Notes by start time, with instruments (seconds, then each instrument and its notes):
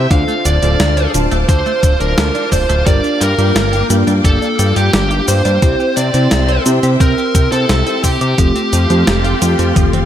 0.11 analog synth bass D2, clean electric guitar D3, fm electric piano D4 F4 A4 C5, string machine C5 F5 A5 D6, lead electric guitar F5, kick, closed hi-hat, cabasa
0.28 clean electric guitar A3, cabasa
0.45 analog synth bass D1, clean electric guitar D3, lead electric guitar D5, closed hi-hat, cabasa
0.62 analog synth bass D1, clean electric guitar D3, fm electric piano D4 F4 A4 C5, closed hi-hat, cabasa
0.80 analog synth bass D2, clean electric guitar D3, snare, closed hi-hat, cabasa
0.97 clean electric guitar D4, closed hi-hat, cabasa
1.14 analog synth bass D1, clean electric guitar D3, fm electric piano D4 F4 C5 A5, closed hi-hat, cabasa
1.31 analog synth bass D1, clean electric guitar A3, closed hi-hat, cabasa
1.49 analog synth bass D2, clean electric guitar D3, lead electric guitar C5, kick, closed hi-hat, cabasa
1.66 clean electric guitar A3, cabasa
1.83 analog synth bass D1, clean electric guitar D3, kick, closed hi-hat, cabasa
2.00 analog synth bass D1, clean electric guitar D3, lead electric guitar A#4, closed hi-hat, cabasa
2.18 analog synth bass D2, clean electric guitar D3, snare, closed hi-hat, cabasa
2.35 clean electric guitar D4, closed hi-hat, cabasa
2.52 analog synth bass D1, clean electric guitar D3, lead electric guitar C5, kick, open hi-hat, cabasa
2.69 analog synth bass D1, clean electric guitar A3, closed hi-hat, cabasa
2.86 analog synth bass G1, clean electric guitar G3, string machine A#3 G5, fm electric piano D4 F4 G4 A#4, lead electric guitar D5, kick, closed hi-hat, cabasa
3.04 clean electric guitar D4, cabasa
3.20 analog synth bass G2, clean electric guitar G3, lead electric guitar A#4, closed hi-hat, cabasa
3.38 analog synth bass G2, clean electric guitar G3, fm electric piano D4 F4 G4 A#4, closed hi-hat, cabasa
3.55 analog synth bass G1, clean electric guitar G3, snare, closed hi-hat, cabasa
3.73 clean electric guitar G4, closed hi-hat, cabasa
3.90 analog synth bass G2, clean electric guitar G3, fm electric piano A#3 D4 F4 G4, closed hi-hat, cabasa
4.07 analog synth bass G2, clean electric guitar D4, closed hi-hat, cabasa
4.24 analog synth bass G1, clean electric guitar G3, lead electric guitar A4, kick, closed hi-hat, cabasa
4.42 clean electric guitar D4, cabasa
4.59 analog synth bass G2, clean electric guitar G3, closed hi-hat, cabasa
4.76 analog synth bass G2, clean electric guitar G3, lead electric guitar G4, closed hi-hat, cabasa
4.93 analog synth bass G1, clean electric guitar G3, snare, closed hi-hat, cabasa
5.11 clean electric guitar G4, closed hi-hat, cabasa
5.28 analog synth bass G2, clean electric guitar G3, lead electric guitar C5, open hi-hat, cabasa
5.45 analog synth bass G2, clean electric guitar D4, closed hi-hat, cabasa
5.62 analog synth bass C2, fm electric piano C4 E4 G4 C5, clean electric guitar C4, string machine C5 E5 E6, kick, closed hi-hat, cabasa
5.80 clean electric guitar G4, cabasa
5.97 analog synth bass C3, clean electric guitar C4, lead electric guitar D5, closed hi-hat, cabasa
6.14 analog synth bass C3, clean electric guitar C4, fm electric piano C4 E4 G4 C5, closed hi-hat, cabasa
6.31 analog synth bass C2, clean electric guitar C4, snare, closed hi-hat, cabasa
6.49 clean electric guitar C5, closed hi-hat, cabasa
6.66 analog synth bass C3, fm electric piano C4 E4 G4 C5, clean electric guitar C4, closed hi-hat, cabasa
6.83 analog synth bass C3, clean electric guitar G4, closed hi-hat, cabasa
7.00 analog synth bass C2, clean electric guitar C4, lead electric guitar A#4, kick, closed hi-hat, cabasa
7.18 clean electric guitar G4, cabasa
7.35 analog synth bass C3, clean electric guitar C4, kick, closed hi-hat, cabasa
7.52 analog synth bass C3, clean electric guitar C4, lead electric guitar A4, closed hi-hat, cabasa
7.69 analog synth bass C2, clean electric guitar C4, snare, closed hi-hat, cabasa
7.87 clean electric guitar C5, closed hi-hat, cabasa
8.04 analog synth bass C3, clean electric guitar C4, lead electric guitar G4, kick, open hi-hat, cabasa
8.21 analog synth bass C3, clean electric guitar G4, closed hi-hat, cabasa
8.38 analog synth bass F1, clean electric guitar F3, fm electric piano A3 C4 F4 G4, string machine A4 F5 C6, kick, closed hi-hat, cabasa
8.55 clean electric guitar C4, closed hi-hat, cabasa
8.73 analog synth bass F2, clean electric guitar F3, closed hi-hat, cabasa
8.90 analog synth bass F2, clean electric guitar F3, fm electric piano A3 C4 F4 G4, closed hi-hat, cabasa
9.07 analog synth bass F1, clean electric guitar F3, snare, closed hi-hat, cabasa
9.25 clean electric guitar F4, closed hi-hat, cabasa
9.42 analog synth bass F2, clean electric guitar F3, fm electric piano A3 C4 F4 G4, closed hi-hat, cabasa
9.59 analog synth bass F2, clean electric guitar C4, closed hi-hat, cabasa
9.76 analog synth bass F1, clean electric guitar F3, kick, closed hi-hat, high tom, cabasa
9.93 clean electric guitar C4, closed hi-hat, high tom, cabasa